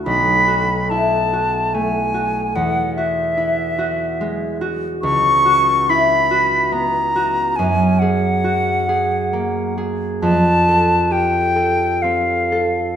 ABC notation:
X:1
M:3/4
L:1/8
Q:1/4=71
K:Em
V:1 name="Flute"
b2 a2 ^g2 | f e4 z | [K:Flyd] ^c'2 b2 _b2 | ^g ^f4 z |
a2 g2 f2 |]
V:2 name="Harp"
[B,,,A,EF] F E F A, F | E,, F E F ^G, F | [K:Flyd] ^C,, ^F E F B, F | ^F,, ^G ^F G ^A, G |
F,, A G A C A |]